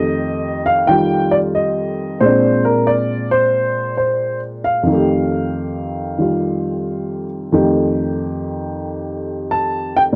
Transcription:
Already playing: F2 D#3 A3 G4 D#5
0.66 F5
0.87 D#3 G3 F4 G5
1.31 D5
1.55 D#5
2.20 A#2 G#3 C4 C5
2.25 D4
2.65 A#4
2.87 D5
3.31 C5
3.97 C5
4.64 F5
4.83 F2 D#3
4.91 A3 G4
6.18 D#3 G3 F4
7.52 F2 D#3 A3 G4
9.51 A5
9.97 G5
10.13 A#2

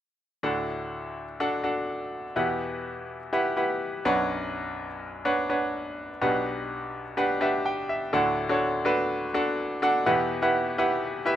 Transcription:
0.43 D2 A2 D4 F#4 A4 F#5
1.40 D4 F#4 A4 F#5
1.64 D4 F#4 A4 F#5
2.36 E2 B2 E4 G4 B4 F#5
3.33 E4 G4 B4 F#5
3.57 E4 G4 B4 F#5
4.05 B1 F#2 D4 B4 C#5 F#5
5.25 D4 B4 C#5 F#5
5.49 D4 B4 C#5 F#5
6.21 B1 B2 D4 G4 B4 F#5
7.17 D4 G4 B4 F#5
7.41 D4 G4 B4 E5 F#5
7.66 G5
7.89 E5
8.13 D2 A2 D4 F#4 A4 F#5
8.49 D4 F#4 A4 C#5
8.85 D4 F#4 A4 B4
9.34 D4 F#4 A4 F#5
9.82 D4 F#4 A4 F#5
10.06 E2 B2 E4 G4 B4 F#5
10.42 E4 G4 B4 F#5
10.78 E4 G4 B4 F#5
11.25 E4 G4 B4 E5

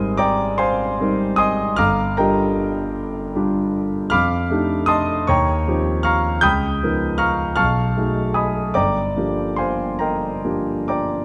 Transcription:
Already playing: G#1 G3 C4 D#4 A#4 D#5 G#5 C6 D#6
0.17 D5 G5 A#5 D6
0.58 C5 F5 G#5 C6
1.00 G3 C4 D#4 A#4
1.36 D#5 G#5 C6 D#6
1.76 G1 F5 A#5 D6 F6
2.17 G3 D4 F4 G4 A#4 D#5 G5 A#5
3.35 G3 D4 F4 G4
4.10 F2 F5 B5 D6 F6
4.50 A3 D4 D#4 G4
4.86 D#5 A5 C6 D#6
5.27 D#2 C#5 G5 A#5 C#6
5.68 F3 C4 D#4 G4
6.03 F5 A#5 C#6 F6
6.41 C#2 G5 B5 D#6 G6
6.83 F3 B3 D#4 A#4
7.18 F5 A#5 C#6 F6
7.56 B1 F5 A5 C#6 F6
7.97 F#3 A3 D#4 G#4
8.34 D#5 G#5 B5 D#6
8.74 G1 D5 G5 A#5 D6
9.16 F3 A#3 D4 G4
9.56 C5 F5 G#5 C6
9.99 A#4 D#5 G5 A#5
10.44 F3 A#3 D4 G4
10.88 D5 G5 A#5 D6

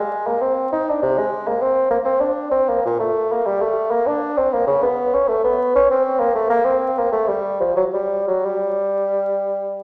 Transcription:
Already playing: G#3
0.27 A#3
0.41 C4
0.72 D#4
0.90 D4
1.02 C3
1.18 G#3
1.48 A#3
1.62 C4
1.91 A#3
2.05 C4
2.20 D4
2.51 C4
2.69 A#3
2.86 A#2
2.99 A3
3.32 A#3
3.46 G3
3.61 A3
3.91 A#3
4.07 D4
4.37 C4
4.54 A#3
4.67 C#3
4.83 B3
5.14 C#4
5.29 A3
5.44 B3
5.75 C#4
5.90 C4
6.20 A#3
6.35 A3
6.50 A#3
6.65 C4
6.99 A#3
7.13 A3
7.28 G3
7.60 F3
7.77 F#3
7.93 G3
8.28 F#3
8.45 G3

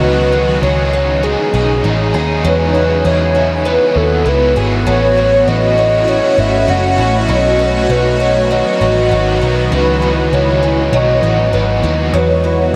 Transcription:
Already playing: D#4
0.00 C#2 C#3 E3 C#4 D#4 G#4 B4
0.30 D#4 G#4
0.36 C#4
0.60 C#2 E3 C#4 C#5
0.64 D#4 G#4
0.91 D#4 G#4
0.97 C#4
1.21 C#3 E3 G#3 C#4 D#4 G#4
1.52 B1 D#4 G#4
1.57 C#4
1.82 A1 E3 C#4 D#4
1.88 G#4
2.12 D#2 D#4 G#4
2.18 C#4
2.43 E2 E3 F#3 G#3 B3 E4 F#4 B4
2.47 F#4
2.73 E4 F#4
2.79 B3
3.03 E2 G#3 B3 E4 G#4
3.07 F#4 C#5
3.33 E4 F#4
3.39 B3
3.64 E3 G#3 B3 E4 F#4 B4
3.94 D#2 E4 F#4 A4
3.99 B3
4.24 C#2 G#3 B3 E4
4.28 F#4 B4
4.54 G#1 E4 F#4 G#4
4.60 B3
4.85 A1 A2 E3 F#3 A3 C#4 F#4 C#5
5.15 C#4 F#4
5.19 F#3 A3
5.45 A1 F#3 A3 E4 D#5
5.49 C#4 F#4
5.75 C#4 F#4
5.79 F#3 A3
6.06 A2 E3 F#3 A3 C#4 C#5
6.10 F#4
6.36 G#1 C#4 E4 F#4 E5
6.41 F#3 A3
6.67 F#1 F#3 A3 C#4 F#5
6.73 F#4
6.97 A1 A3 C#4 E4 F#4
7.03 F#3
7.28 B1 B2 D#3 F#3 B3 D#4 D#5
7.32 F#4
7.58 B3 D#4 F#4
7.63 B3
7.88 B1 F#3 B3 D#4 B4
7.93 F#4
8.18 B3 D#4 F#4 C#5
8.24 B3
8.49 B2 F#3 B3 D#4 D#5
8.53 F#4
8.79 A1 D#4 F#4
8.84 B3
9.09 G#1 F#3 B3 D#4
9.14 F#4
9.39 B1 D#4 F#4
9.45 B3
9.70 C#2 C#3 E3 G#3 C#4 D#4 B4
9.74 G#4
10.01 G#3 D#4 G#4
10.06 C#4
10.31 C#2 E3 C#4 D#4 C#5
10.36 G#4
10.60 G#3 D#4 G#4
10.66 C#4
10.92 B1 B2 D#3 F#3 B3 D#4 F#4 D#5
11.21 A1 D#4 F#4
11.27 B3
11.51 G#1 F#3 B3
11.55 D#4 F#4
11.82 D#2 D#4 F#4
11.87 B3
12.13 E2 F#3 G#3 B3 E4 F#4 B4
12.44 E4

